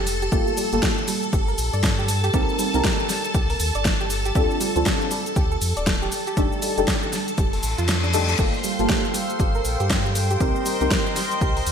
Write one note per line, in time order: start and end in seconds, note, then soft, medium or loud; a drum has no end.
0.00 0.29 F1 medium
0.00 0.30 D4 medium
0.00 0.30 D#4 medium
0.00 8.40 A4 medium
0.00 8.40 A5 medium
0.07 open hi-hat loud
0.07 shaker medium
0.22 0.29 G4 medium
0.22 closed hi-hat medium
0.22 shaker soft
0.32 0.44 G1 loud
0.32 0.69 A#3 medium
0.32 0.69 F4 medium
0.32 0.69 G4 medium
0.32 0.38 G4 medium
0.32 0.69 A4 medium
0.32 kick loud
0.32 closed hi-hat medium
0.32 shaker soft
0.47 shaker soft
0.57 0.63 G3 medium
0.57 open hi-hat loud
0.57 shaker medium
0.72 0.80 G1 loud
0.72 2.31 A#3 medium
0.72 2.31 F4 medium
0.72 2.31 G4 medium
0.72 2.32 A4 medium
0.72 closed hi-hat medium
0.72 shaker soft
0.82 0.97 G4 medium
0.82 kick loud
0.82 snare loud
0.82 closed hi-hat medium
0.82 shaker soft
0.98 shaker soft
1.08 1.14 G3 medium
1.08 open hi-hat loud
1.08 shaker medium
1.23 closed hi-hat medium
1.23 shaker soft
1.33 1.54 G1 loud
1.33 1.39 G4 medium
1.33 kick loud
1.33 closed hi-hat medium
1.33 shaker soft
1.48 1.58 A#4 medium
1.48 shaker soft
1.58 1.70 A#1 loud
1.58 open hi-hat loud
1.58 shaker medium
1.73 2.30 G2 medium
1.73 1.80 D5 medium
1.73 closed hi-hat soft
1.73 shaker soft
1.83 kick loud
1.83 snare loud
1.83 closed hi-hat medium
1.83 shaker soft
1.99 2.05 G4 medium
1.99 shaker soft
2.08 open hi-hat loud
2.08 shaker medium
2.24 2.33 G4 medium
2.24 closed hi-hat medium
2.24 shaker soft
2.34 2.46 C2 loud
2.34 2.71 C4 medium
2.34 2.71 D#4 medium
2.34 2.40 G4 medium
2.34 2.71 G4 medium
2.34 2.71 A#4 medium
2.34 kick loud
2.34 closed hi-hat medium
2.34 shaker soft
2.49 shaker soft
2.59 2.65 G3 medium
2.59 open hi-hat loud
2.59 shaker medium
2.74 2.82 C2 loud
2.74 4.33 C4 medium
2.74 4.33 D#4 medium
2.74 4.33 G4 medium
2.74 4.33 A#4 medium
2.74 closed hi-hat medium
2.74 shaker soft
2.84 2.99 G4 medium
2.84 kick loud
2.84 snare loud
2.84 closed hi-hat medium
2.84 shaker soft
2.99 shaker soft
3.09 3.15 G3 medium
3.09 snare soft
3.09 open hi-hat loud
3.09 shaker medium
3.25 closed hi-hat medium
3.25 shaker soft
3.34 3.56 C2 loud
3.34 3.41 G4 medium
3.34 kick loud
3.34 closed hi-hat medium
3.34 shaker soft
3.50 3.59 A#4 medium
3.50 open hi-hat medium
3.50 shaker soft
3.60 3.72 D#2 loud
3.60 open hi-hat loud
3.60 shaker medium
3.75 4.32 G1 medium
3.75 3.82 D5 medium
3.75 closed hi-hat medium
3.75 shaker soft
3.85 kick loud
3.85 snare loud
3.85 closed hi-hat medium
3.85 shaker soft
4.00 4.07 G4 medium
4.00 shaker soft
4.10 open hi-hat loud
4.10 shaker medium
4.25 4.34 G4 medium
4.25 closed hi-hat medium
4.25 shaker soft
4.35 4.47 D2 loud
4.35 4.72 C4 medium
4.35 4.72 D4 medium
4.35 4.72 F4 medium
4.35 4.41 G4 medium
4.35 4.72 A4 medium
4.35 kick loud
4.35 closed hi-hat medium
4.35 shaker soft
4.51 shaker soft
4.61 4.67 G3 medium
4.61 open hi-hat loud
4.61 shaker medium
4.76 4.84 D2 loud
4.76 6.11 C4 medium
4.76 6.11 D4 medium
4.76 6.11 F4 medium
4.76 6.11 A4 medium
4.76 closed hi-hat medium
4.76 shaker soft
4.86 5.00 G4 medium
4.86 kick loud
4.86 snare loud
4.86 closed hi-hat medium
4.86 shaker soft
5.01 shaker soft
5.11 5.17 G3 medium
5.11 open hi-hat loud
5.11 shaker medium
5.26 closed hi-hat medium
5.26 shaker soft
5.36 5.57 D2 loud
5.36 5.42 G4 medium
5.36 kick loud
5.36 closed hi-hat medium
5.36 shaker medium
5.52 5.61 A4 medium
5.52 shaker soft
5.61 5.74 F2 loud
5.61 open hi-hat loud
5.61 shaker medium
5.77 6.09 D1 medium
5.77 5.83 D5 medium
5.77 closed hi-hat medium
5.77 shaker soft
5.87 kick loud
5.87 snare loud
5.87 closed hi-hat medium
5.87 shaker soft
6.02 6.09 G4 medium
6.02 shaker soft
6.12 open hi-hat loud
6.12 shaker medium
6.27 6.36 G4 medium
6.27 closed hi-hat medium
6.27 shaker soft
6.37 6.49 F1 loud
6.37 6.74 D4 medium
6.37 6.74 D#4 medium
6.37 6.43 G4 medium
6.37 6.74 G4 medium
6.37 6.74 A4 medium
6.37 kick loud
6.37 closed hi-hat medium
6.37 shaker soft
6.52 shaker soft
6.62 6.68 G3 medium
6.62 open hi-hat loud
6.62 shaker medium
6.77 6.85 F1 loud
6.77 8.11 D4 medium
6.77 8.12 D#4 medium
6.77 8.12 G4 medium
6.77 8.12 A4 medium
6.77 closed hi-hat medium
6.77 shaker soft
6.87 7.02 G4 medium
6.87 kick loud
6.87 snare loud
6.87 closed hi-hat medium
6.87 shaker soft
7.03 shaker soft
7.13 7.19 G3 medium
7.13 snare soft
7.13 open hi-hat loud
7.13 shaker medium
7.28 closed hi-hat medium
7.28 shaker soft
7.38 7.59 F1 loud
7.38 7.44 G4 medium
7.38 kick loud
7.38 closed hi-hat medium
7.38 reverse cymbal medium
7.38 shaker soft
7.53 7.63 A4 medium
7.53 open hi-hat medium
7.53 shaker soft
7.63 7.75 A1 loud
7.63 open hi-hat loud
7.63 shaker medium
7.78 8.35 F2 medium
7.78 7.88 F4 loud
7.78 closed hi-hat medium
7.78 shaker soft
7.88 snare loud
7.88 closed hi-hat medium
7.88 shaker soft
8.04 8.10 D4 medium
8.04 shaker soft
8.13 8.36 D4 medium
8.13 8.36 D#4 medium
8.13 8.36 G4 medium
8.13 8.36 A4 loud
8.13 open hi-hat loud
8.13 shaker medium
8.29 8.38 A4 medium
8.29 closed hi-hat medium
8.29 shaker soft
8.39 8.51 G1 medium
8.39 8.76 A#3 medium
8.39 8.76 F4 medium
8.39 8.45 G4 medium
8.39 8.76 G4 medium
8.39 10.38 A4 medium
8.39 8.76 A4 medium
8.39 11.72 C5 medium
8.39 10.38 F5 medium
8.39 11.72 G5 medium
8.39 11.72 C6 medium
8.39 kick loud
8.39 closed hi-hat medium
8.39 crash medium
8.39 shaker soft
8.54 shaker soft
8.64 8.70 G3 medium
8.64 open hi-hat loud
8.64 shaker medium
8.79 8.87 G1 loud
8.79 10.38 A#3 medium
8.79 10.38 F4 medium
8.79 10.38 G4 medium
8.79 10.38 A4 medium
8.79 closed hi-hat medium
8.79 shaker soft
8.89 9.04 G4 medium
8.89 kick loud
8.89 snare loud
8.89 closed hi-hat medium
8.89 shaker soft
9.05 shaker soft
9.14 9.20 G3 medium
9.14 open hi-hat loud
9.14 shaker medium
9.30 closed hi-hat medium
9.30 shaker soft
9.40 9.61 G1 loud
9.40 9.46 G4 medium
9.40 kick loud
9.40 closed hi-hat medium
9.40 shaker soft
9.55 9.64 A#4 medium
9.55 shaker soft
9.65 9.77 A#1 loud
9.65 open hi-hat loud
9.65 shaker medium
9.80 10.37 G2 medium
9.80 9.84 G4 medium
9.80 closed hi-hat medium
9.80 shaker soft
9.90 kick loud
9.90 snare loud
9.90 closed hi-hat medium
9.90 shaker soft
10.05 10.12 G4 medium
10.05 shaker soft
10.15 open hi-hat loud
10.15 shaker medium
10.31 10.39 G4 medium
10.31 closed hi-hat medium
10.31 shaker soft
10.40 10.53 C2 medium
10.40 10.77 C4 medium
10.40 10.77 D#4 medium
10.40 10.47 G4 medium
10.40 10.77 G4 medium
10.40 11.72 A#4 medium
10.40 10.77 A#4 medium
10.40 11.72 D#5 medium
10.40 11.72 C6 loud
10.40 kick loud
10.40 closed hi-hat medium
10.40 shaker soft
10.56 shaker soft
10.66 10.72 G3 medium
10.66 open hi-hat loud
10.66 shaker medium
10.81 10.89 C2 loud
10.81 11.72 C4 medium
10.81 11.72 D#4 medium
10.81 11.72 G4 medium
10.81 11.72 A#4 medium
10.81 closed hi-hat medium
10.81 shaker soft
10.91 11.05 G4 medium
10.91 kick loud
10.91 snare loud
10.91 closed hi-hat medium
10.91 shaker soft
11.06 shaker soft
11.16 11.22 G3 medium
11.16 snare soft
11.16 open hi-hat loud
11.16 shaker medium
11.31 closed hi-hat medium
11.31 shaker soft
11.41 11.62 C2 loud
11.41 11.47 G4 medium
11.41 kick loud
11.41 closed hi-hat medium
11.41 shaker soft
11.57 11.66 A#4 medium
11.57 open hi-hat medium
11.57 shaker soft
11.67 11.72 D#2 loud
11.67 open hi-hat loud
11.67 shaker medium